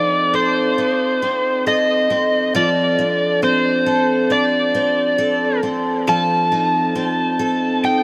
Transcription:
Already playing: F3 C4 D#4 A4 D5
0.34 A4 C5
0.78 D#4
1.22 C4
1.67 A4 D#5
2.10 C4
2.55 F3 A4 D5
2.98 D4
3.42 C4 C5
3.86 A4
4.30 D4 D5
4.74 C4
5.18 A4
5.63 C4
6.07 F3 A4 A5
6.52 D#4
6.95 C4
7.39 A4
7.84 D#4 G5

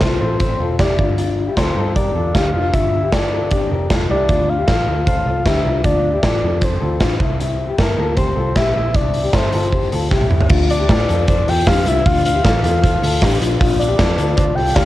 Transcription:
Already playing: C5
0.01 C2 F4 A4, kick, snare, closed hi-hat
0.21 A1 F4 A4 C5
0.40 A4 C5, kick, closed hi-hat
0.60 E1 F4 A4
0.79 F1 E4 G4 D5, kick, snare, closed hi-hat
0.99 G1 D4 F4, kick
1.18 D4 F4, closed hi-hat
1.47 E4 G4
1.56 D2 F4 A4 C5, kick, snare, closed hi-hat
1.76 G2 F4 A4
1.96 G4 A#4 D5, kick, closed hi-hat
2.15 E2 F4 A4
2.34 D2 D4 G4 F5, kick, snare, closed hi-hat
2.53 F1 D4 F4 F5
2.73 G1 D4 F4 E5, kick, closed hi-hat
3.02 E4 G4
3.12 F4 A4 D5, kick, snare, closed hi-hat
3.32 F4 A4
3.51 D4 G4, kick, closed hi-hat
3.71 F1 G4 A#4
3.90 F1 F4 A4, kick, snare, closed hi-hat
4.10 C2 E4 G4 D5
4.29 D2 D4 F4, kick, closed hi-hat
4.49 F5
4.58 E4 G4
4.68 A1 F4 A4, kick, snare, closed hi-hat
4.87 D2 F4 A4
5.07 A4 C5 F5, kick, closed hi-hat
5.26 C2 F4 A4
5.46 D2 D4 G4 E5, kick, snare, closed hi-hat
5.64 C2 D4 F4
5.84 D2 D4 F4 D5, kick, closed hi-hat
6.13 E4 G4
6.22 A1 F4 A4 D5, kick, snare, closed hi-hat
6.42 F2 F4 A4
6.61 A4 C5, kick, closed hi-hat
6.81 D2 F4 A4
7.00 A1 D4 F4, kick, snare, closed hi-hat
7.19 C2 C4 E4, kick
7.39 C4 E4, closed hi-hat
7.68 E4 G4
7.78 G1 E4 A4 A#4, kick, snare, closed hi-hat
7.97 D2 F4 A4
8.16 G4 C5, kick, closed hi-hat
8.36 C2 F4 A4
8.55 A#1 E4 G4 E5, kick, snare, closed hi-hat
8.74 A#1 C4 E4 E5
8.94 C2 C4 E4 D5, kick, closed hi-hat
9.14 open hi-hat
9.23 E4 G4
9.33 G1 E4 A4 C5, kick, snare, closed hi-hat
9.52 G1 F4 A4, open hi-hat
9.71 G4 C5, kick, closed hi-hat
9.92 D2 F4 A4, open hi-hat
10.11 C2 E4 G4, kick, snare
10.21 high tom
10.30 G1 C4 E4, mid tom
10.41 floor tom
10.49 D2 D4 F4, kick, crash
10.69 D5, hi-hat pedal, open hi-hat
10.79 E4 G4
10.89 A2 F4 A4, kick, snare, hi-hat pedal, open hi-hat
11.09 F2 F4 A4, hi-hat pedal, open hi-hat
11.28 A4 C5 D5, kick, hi-hat pedal, open hi-hat
11.47 E2 F4 A4 G5, hi-hat pedal, open hi-hat
11.67 F2 D4 G4 F5, kick, snare, hi-hat pedal, open hi-hat
11.86 C2 D4 F4 E5, hi-hat pedal, open hi-hat
12.05 D2 D4 F4 F5, kick, hi-hat pedal, open hi-hat
12.25 F5, hi-hat pedal, open hi-hat
12.34 E4 G4
12.44 A1 F4 A4, kick, snare, hi-hat pedal, open hi-hat
12.63 E2 F4 A4 F5, hi-hat pedal, open hi-hat
12.83 A4 C5, kick, hi-hat pedal, open hi-hat
13.02 D2 F4 A4, hi-hat pedal, open hi-hat
13.22 A1 D4 G4, kick, snare, hi-hat pedal, open hi-hat
13.40 A#1 D4 F4, hi-hat pedal, open hi-hat
13.59 A#1 D4 F4, kick, hi-hat pedal, open hi-hat
13.79 D5, hi-hat pedal, open hi-hat
13.88 E4 G4
13.98 F2 F4 A4, kick, snare, hi-hat pedal, open hi-hat
14.18 D2 F4 A4, hi-hat pedal, open hi-hat
14.36 F4 C5 D5, kick, hi-hat pedal, open hi-hat
14.55 C2 F4 A4 G5, hi-hat pedal, open hi-hat
14.75 D2 D4 G4 F5, kick, snare, hi-hat pedal, open hi-hat

